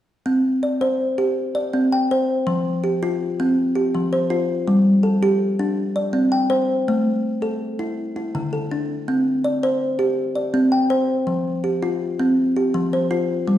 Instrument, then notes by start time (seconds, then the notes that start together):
kalimba
0.26 C4
0.63 D5
0.81 C5
1.18 G4
1.55 D5
1.73 C4
1.92 G5
2.11 C5
2.47 F3
2.84 G4
3.03 F4
3.40 C4
3.75 G4
3.95 F3
4.13 C5
4.30 F4
4.68 G3
5.03 A4
5.23 G4
5.59 D4
5.96 D5
6.13 C4
6.32 G5
6.50 C5
6.88 A3
7.42 A4
7.79 E4
8.16 E4
8.35 D3
8.53 A4
8.71 D4
9.08 C4
9.44 D5
9.63 C5
9.99 G4
10.35 D5
10.54 C4
10.72 G5
10.90 C5
11.27 F3
11.64 G4
11.83 F4
12.20 C4
12.56 G4
12.74 F3
12.93 C5
13.11 F4
13.48 G3